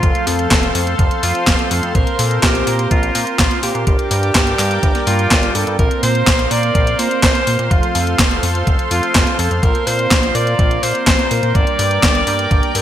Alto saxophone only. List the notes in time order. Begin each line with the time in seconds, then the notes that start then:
Already playing: F4
0.27 A4
1.23 F4
1.71 A4
1.95 A#4
2.19 A4
2.43 G4
2.91 F4
3.39 F4
3.63 G4
3.87 G4
5.07 F4
5.55 A4
5.79 A#4
6.03 C5
6.51 D5
6.99 C5
7.23 C5
7.71 F4
8.91 F4
9.39 A4
9.63 A#4
9.87 C5
10.35 D5
10.83 C5
11.07 C5
11.55 D5
12.75 A#4